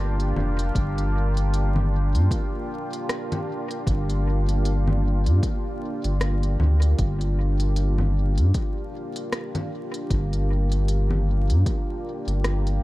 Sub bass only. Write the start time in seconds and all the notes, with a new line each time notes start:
Already playing: G1
0.36 F1
0.75 G1
2.14 G2
3.87 G1
5.26 G2
6.04 G1
6.60 D2
6.99 G1
8.38 G2
10.10 G1
11.50 G2
12.27 G1